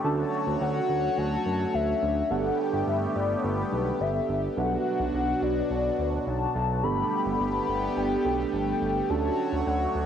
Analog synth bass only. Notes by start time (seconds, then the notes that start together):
0.04 D2
0.47 D2
0.61 D2
0.89 D2
1.17 D2
1.46 F#2
1.74 D2
2.02 D2
2.31 G1
2.73 G1
2.87 G1
3.15 G1
3.44 G1
3.72 B1
4.01 G1
4.29 G1
4.57 B1
5.00 B1
5.14 B1
5.42 B1
5.70 B1
5.99 D2
6.27 B1
6.55 B1
6.83 G1
7.26 G1
7.40 G1
7.68 G1
7.97 G1
8.25 B1
8.53 G1
8.82 G1
9.10 D2
9.52 D2
9.67 D2
9.95 D2